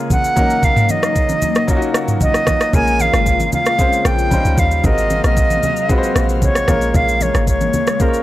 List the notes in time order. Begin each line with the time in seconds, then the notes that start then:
Already playing: C#3 G#3 A#3 C#4 F4 A#4 F5
0.10 F#5, kick, high conga, low conga, shaker
0.24 shaker
0.36 F#3 A#3 C#4 D#4 A#4, kick, high conga, shaker
0.50 shaker
0.63 F5, kick, low conga, shaker
0.76 mid tom, shaker
0.89 D#5, high conga, shaker
1.03 cross-stick, shaker
1.16 kick, shaker
1.29 high conga, shaker
1.42 high conga, low conga, shaker
1.55 cross-stick, shaker
1.67 F#3 A#3 C#4 D#4 F4, kick, shaker
1.77 F#4
1.82 shaker
1.94 cross-stick, shaker
2.08 mid tom, shaker
2.21 D#5, kick, high conga, low conga, shaker
2.34 cross-stick, shaker
2.47 kick, cross-stick, high conga, shaker
2.61 cross-stick, shaker
2.73 A#1 C#3 G#3 A#3 C#4 F4 A#4 G#5, kick, low conga, shaker
2.87 shaker
3.00 F5, high conga, shaker
3.13 G#1, cross-stick, shaker
3.26 kick, shaker
3.40 high conga, shaker
3.52 F5, high conga, low conga, shaker
3.66 cross-stick, shaker
3.78 G#3 A#3 C4 F4 C5, kick, shaker
3.86 C#4
3.93 shaker
4.05 A#1 G5, cross-stick, shaker
4.19 shaker
4.31 G3 C#4 D#4 F4 C5 F5, kick, high conga, low conga, shaker
4.45 C#2, shaker
4.58 D#2 F5, kick, high conga, shaker
4.71 shaker
4.83 G#1 C3 F#3 G#3 A#3 C4 F4 F#4 A#4 D#5, kick, low conga, shaker
4.98 shaker
5.10 high conga, shaker
5.24 A#1 D#5, cross-stick, shaker
5.37 kick, shaker
5.50 high conga, shaker
5.63 high conga, low conga, shaker
5.76 shaker
5.89 G#3 C4 F4 F#4 B4, kick, shaker
5.98 C5
6.03 shaker
6.16 A#1, cross-stick, shaker
6.29 shaker
6.42 C#5, kick, high conga, low conga, shaker
6.55 cross-stick, shaker
6.67 A#1 C#3 G#3 A#3 C#4 F4 A#4, kick, cross-stick, high conga, shaker
6.82 shaker
6.94 A#1 F5, kick, low conga, shaker
7.08 shaker
7.21 C#5, high conga, shaker
7.35 G#1, cross-stick, shaker
7.47 C#5, kick, shaker
7.61 high conga, shaker
7.73 high conga, low conga, shaker
7.87 cross-stick, shaker
7.99 G#3 A#3 C#4 F4 A#4 C5, kick, shaker
8.08 C#5
8.14 shaker